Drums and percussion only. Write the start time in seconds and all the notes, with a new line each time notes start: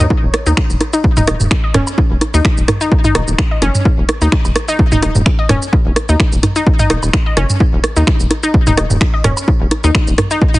0.10 kick, low bongo
0.34 cross-stick, closed hi-hat, low bongo
0.46 shaker
0.57 finger snap, kick, low bongo, high woodblock
0.70 shaker
0.81 cross-stick, closed hi-hat, low bongo
0.93 shaker
1.04 kick, low bongo
1.17 mid tom, shaker
1.27 cross-stick, closed hi-hat, low bongo
1.40 mid tom, shaker
1.51 finger snap, kick, closed hi-hat, low bongo
1.74 cross-stick, closed hi-hat, mid tom, low bongo
1.87 high woodblock, shaker
1.98 kick, low bongo
2.21 cross-stick, closed hi-hat, low bongo
2.34 shaker
2.45 finger snap, kick, low bongo
2.57 shaker
2.68 cross-stick, closed hi-hat, mid tom, low bongo
2.81 shaker
2.92 kick, low bongo
3.04 mid tom, shaker
3.15 cross-stick, closed hi-hat, low bongo, high woodblock
3.28 shaker
3.38 finger snap, kick, closed hi-hat, low bongo
3.62 cross-stick, closed hi-hat, low bongo
3.75 mid tom, shaker
3.85 kick, low bongo
4.09 cross-stick, closed hi-hat, low bongo
4.21 shaker
4.32 finger snap, kick, low bongo
4.45 high woodblock, shaker
4.56 cross-stick, closed hi-hat, low bongo
4.68 shaker
4.79 kick, low bongo
4.92 mid tom, shaker
5.02 cross-stick, closed hi-hat, low bongo
5.15 mid tom, shaker
5.26 finger snap, kick, closed hi-hat, low bongo
5.49 cross-stick, closed hi-hat, mid tom, low bongo
5.62 shaker
5.73 kick, low bongo, high woodblock
5.96 cross-stick, closed hi-hat, low bongo
6.09 shaker
6.20 finger snap, kick, low bongo
6.32 shaker
6.43 cross-stick, closed hi-hat, mid tom, low bongo
6.56 closed hi-hat, shaker
6.67 kick, low bongo
6.79 mid tom, shaker
6.90 cross-stick, closed hi-hat, low bongo
7.03 high woodblock, shaker
7.13 finger snap, kick, closed hi-hat, low bongo
7.37 cross-stick, closed hi-hat, low bongo
7.50 mid tom, shaker
7.60 kick, low bongo
7.84 cross-stick, closed hi-hat, low bongo
7.96 shaker
8.07 finger snap, kick, low bongo, high woodblock
8.20 shaker
8.31 cross-stick, closed hi-hat, low bongo
8.43 shaker
8.54 kick, low bongo
8.67 mid tom, shaker
8.77 cross-stick, closed hi-hat, low bongo
8.90 mid tom, shaker
9.01 finger snap, kick, closed hi-hat, low bongo
9.24 cross-stick, closed hi-hat, mid tom, low bongo
9.37 high woodblock, shaker
9.48 kick, low bongo
9.71 cross-stick, closed hi-hat, low bongo
9.84 shaker
9.95 finger snap, kick, low bongo
10.07 shaker
10.18 cross-stick, closed hi-hat, mid tom, low bongo
10.31 shaker
10.42 kick, low bongo
10.54 mid tom, shaker